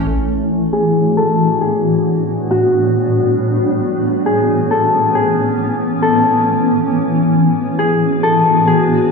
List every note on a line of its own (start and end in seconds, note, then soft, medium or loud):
0.00 0.79 A4 medium
0.07 8.86 A2 medium
0.07 1.82 E3 medium
0.07 1.82 B3 medium
0.07 1.82 D4 medium
0.07 3.57 F#4 medium
0.73 1.23 G#4 medium
1.17 1.67 A4 medium
1.61 3.89 G#4 medium
1.83 3.58 G3 medium
1.83 3.58 B3 medium
1.83 3.58 D4 medium
2.51 4.94 F#4 medium
3.60 8.85 E3 medium
3.60 7.09 B3 medium
3.60 7.09 C#4 medium
3.60 7.09 G#5 loud
4.26 4.77 G#4 medium
4.71 5.21 A4 medium
5.15 6.08 G#4 medium
6.02 7.85 A4 medium
7.13 8.88 B3 medium
7.13 9.12 D4 medium
7.13 9.12 F#4 medium
7.79 8.29 G#4 medium
8.23 8.73 A4 medium
8.67 9.12 G#4 medium